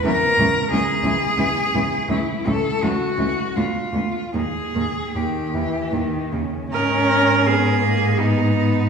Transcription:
X:1
M:3/4
L:1/16
Q:1/4=82
K:G#m
V:1 name="Cello"
A4 G8 | E2 =A2 F4 =F4 | G4 =G6 z2 | d d d d d d d d d d d d |]
V:2 name="Cello"
B,2 B,2 B,2 B,2 B,2 B,2 | =A,2 A,2 A,2 A,2 B,2 B,2 | A,2 A,2 A,2 A,2 A,2 A,2 | A4 G4 D4 |]
V:3 name="Cello" clef=bass
E,2 E,2 E,2 E,2 E,2 E,2 | E,2 E,2 E,2 E,2 _A,2 A,2 | D,2 D,2 D,2 E,2 D,2 C,2 | C4 B,2 A,2 B,2 B,2 |]
V:4 name="Cello" clef=bass
C,,2 C,,2 C,,2 C,,2 C,,2 C,,2 | C,,2 C,,2 C,,2 C,,2 =D,,2 D,,2 | D,,2 D,,2 D,,2 D,,2 D,,2 D,,2 | G,,12 |]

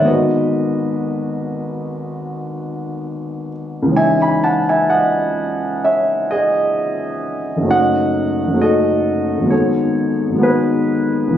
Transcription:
X:1
M:4/4
L:1/16
Q:1/4=64
K:C#m
V:1 name="Grand piano"
[Bd]12- [Bd]2 z2 | [eg] [gb] [fa] [eg] [df]4 [ce]2 [Gd]6 | [df]4 [Ad]4 [Ac]4 [GB]4 |]
V:2 name="Grand piano" clef=bass
[G,,,D,G,B,F]16 | [C,,E,G,CD]16 | [F,,,F,A,CD]4 [F,,,F,A,CD]4 [G,,,F,G,B,D]4 [G,,,F,G,B,D]4 |]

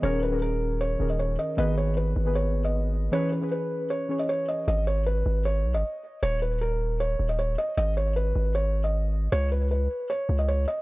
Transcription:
X:1
M:4/4
L:1/16
Q:1/4=155
K:G#m
V:1 name="Felt piano"
c2 B2 A4 c3 d c2 d2 | d2 c2 B4 c3 d4- d | c2 B2 B4 c3 d c2 d2 | d2 c2 B4 c3 d4- d |
c2 B2 A4 c3 d c2 d2 | d2 c2 B4 c3 d4- d | c2 B2 B4 c3 d c2 d2 |]
V:2 name="Synth keys"
[D,CGA]2 z [D,CGA]4- [D,CGA] z2 [D,CGA]4- [D,CGA] z | [D,B,GB]4- [D,B,GB] z2 [D,B,GB]6 z3 | [E,CGB]2 z [E,CGB]4- [E,CGB] z2 [E,CGc]4- [E,CGc] z | z16 |
z16 | z16 | z16 |]
V:3 name="808-style bass" clef=bass
D,,,8- D,,,2 D,,,4 z2 | G,,,6 G,,,8- G,,,2 | z16 | G,,,6 G,,,4 B,,, G,,, z4 |
D,,,8- D,,,2 D,,,4 z2 | G,,,6 G,,,8- G,,,2 | C,,6 z4 C,,4 z2 |]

